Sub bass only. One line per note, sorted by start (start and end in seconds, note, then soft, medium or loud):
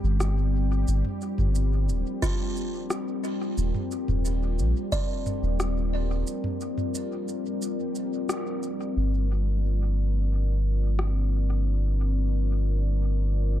0.04 0.85 G1 loud
0.88 1.03 G1 loud
1.38 1.90 G1 loud
1.89 2.04 D1 medium
3.58 3.72 D#1 medium
4.08 4.60 D#1 loud
4.59 4.74 A#1 medium
5.43 6.24 D#1 loud
8.97 13.60 G1 medium